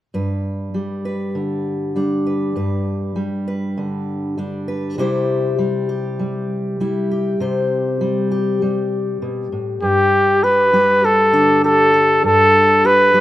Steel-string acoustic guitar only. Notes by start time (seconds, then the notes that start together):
0.14 G2 B4
0.74 G3
1.05 B4
1.35 D3
1.96 G3 D4
2.27 B4
2.56 G2 B4
3.16 G3
3.48 B4
3.78 D3
4.38 G3 D4
4.68 B4
4.98 C3 G3 E4 G4 C5
5.58 G3
5.89 G4
6.19 G3
6.80 G3 E4
7.11 G4
7.40 C3 C5
8.01 G3
8.32 G4
8.62 G3
9.22 B2
9.52 A2
9.82 G2
10.44 G4
10.73 G3 G4
11.04 G4
11.33 D3 D4
11.64 G4
12.23 G2
12.85 G4
13.14 G3 G4